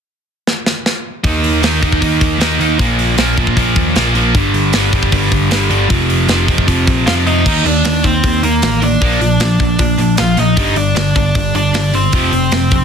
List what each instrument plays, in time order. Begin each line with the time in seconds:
0.47 snare
0.66 snare
0.86 snare
1.24 picked electric bass D#2, distorted electric guitar D#3 A#3 D#4, kick, open hi-hat
1.44 picked electric bass D#2, open hi-hat
1.62 picked electric bass D#2, distorted electric guitar D#3 A#3 D#4, snare, open hi-hat
1.81 distorted electric guitar D#3 A#3 D#4, kick, open hi-hat
1.92 kick
2.00 picked electric bass D#2, distorted electric guitar D#3 A#3 D#4, kick, open hi-hat
2.21 picked electric bass D#2, kick, open hi-hat
2.38 picked electric bass D#2, distorted electric guitar D#3 A#3 D#4, snare, open hi-hat
2.59 picked electric bass D#2, distorted electric guitar D#3 A#3 D#4, open hi-hat
2.78 picked electric bass A#1, distorted electric guitar A#2 F3 A#3, kick, open hi-hat
2.99 open hi-hat
3.17 picked electric bass A#1, distorted electric guitar A#2 F3 A#3, snare, open hi-hat
3.37 picked electric bass A#1, distorted electric guitar A#2 F3 A#3, kick, open hi-hat
3.47 kick
3.56 picked electric bass A#1, distorted electric guitar A#2 F3 A#3, kick, open hi-hat
3.76 picked electric bass D#2, kick, open hi-hat
3.95 picked electric bass A#1, distorted electric guitar A#2 F3 A#3, snare, open hi-hat
4.15 distorted electric guitar A#2 F3 A#3, open hi-hat
4.35 picked electric bass G1, distorted electric guitar G2 D3 G3, kick, open hi-hat
4.54 picked electric bass G1, open hi-hat
4.73 picked electric bass G1, distorted electric guitar G2 D3 G3, snare, open hi-hat
4.93 distorted electric guitar G2 D3 G3, kick
5.03 kick
5.12 picked electric bass G1, distorted electric guitar G2 D3 G3, kick, open hi-hat
5.32 picked electric bass G1, kick, open hi-hat
5.50 picked electric bass G1, distorted electric guitar G2 D3 G3, snare, open hi-hat
5.70 picked electric bass G1, distorted electric guitar G2 D3 G3, open hi-hat
5.89 picked electric bass F1, distorted electric guitar F2 C3 F3, kick, open hi-hat
6.10 open hi-hat
6.28 picked electric bass F1, distorted electric guitar F2 C3 F3, snare, open hi-hat
6.48 picked electric bass F1, distorted electric guitar F2 C3 F3, kick, open hi-hat
6.58 kick
6.67 picked electric bass F1, distorted electric guitar F2 C3 F3, kick, open hi-hat
6.87 picked electric bass A#1, kick, open hi-hat
7.06 distorted electric guitar F2 C3 F3, picked electric bass F2, overdriven electric guitar F4 F5, snare, open hi-hat
7.26 distorted electric guitar F2 C3 F3, overdriven electric guitar D#4 D#5, open hi-hat
7.46 picked electric bass D#2, distorted electric guitar D#3 A#3 D#4, kick, crash
7.65 picked electric bass D#2, distorted electric guitar D#3 A#3, overdriven electric guitar D4 D5, open hi-hat
7.85 picked electric bass D#2, distorted electric guitar D#3 A#3, snare, open hi-hat
8.04 picked electric bass D#2, distorted electric guitar D#3 A#3, overdriven electric guitar C4 C5, kick, open hi-hat
8.24 picked electric bass D#2, distorted electric guitar D#3 A#3, kick, open hi-hat
8.43 picked electric bass D#2, distorted electric guitar D#3 A#3, overdriven electric guitar A#3 A#4, open hi-hat
8.62 picked electric bass A1, distorted electric guitar D#3 A#3, snare, open hi-hat
8.82 distorted electric guitar D#3 A#3, overdriven electric guitar D4 D5, open hi-hat
9.01 picked electric bass A#1, distorted electric guitar A#2 F3 A#3, kick, open hi-hat
9.20 picked electric bass A#1, distorted electric guitar A#2 F3, open hi-hat
9.40 picked electric bass A#1, distorted electric guitar A#2 F3, snare, open hi-hat
9.60 picked electric bass A#1, distorted electric guitar A#2 F3, kick, open hi-hat
9.79 picked electric bass A#1, distorted electric guitar A#2 F3, kick, open hi-hat
9.98 picked electric bass A#1, distorted electric guitar A#2 F3, open hi-hat
10.17 picked electric bass A#1, distorted electric guitar A#2 F3, overdriven electric guitar F4 F5, snare, open hi-hat
10.37 picked electric bass A#1, distorted electric guitar A#2 F3, overdriven electric guitar D#4 D#5, open hi-hat
10.56 picked electric bass G1, distorted electric guitar G2 D3 G3, kick, open hi-hat
10.76 picked electric bass G1, distorted electric guitar G2 D3, overdriven electric guitar D4 D5, open hi-hat
10.95 picked electric bass G1, distorted electric guitar G2 D3, snare, open hi-hat
11.15 picked electric bass G1, distorted electric guitar G2 D3, overdriven electric guitar D4 D5, kick, open hi-hat
11.35 picked electric bass G1, distorted electric guitar G2 D3, kick, open hi-hat
11.54 picked electric bass G1, distorted electric guitar G2 D3, overdriven electric guitar D4 D5, open hi-hat
11.74 picked electric bass G1, distorted electric guitar G2 D3, snare, open hi-hat
11.94 distorted electric guitar G2 D3, overdriven electric guitar C4 C5, open hi-hat
12.12 picked electric bass F1, distorted electric guitar F2 C3 F3, kick, open hi-hat
12.32 picked electric bass F1, distorted electric guitar F2 C3, open hi-hat
12.51 picked electric bass F1, distorted electric guitar F2 C3, snare, open hi-hat
12.71 picked electric bass F1, distorted electric guitar F2 C3, kick, open hi-hat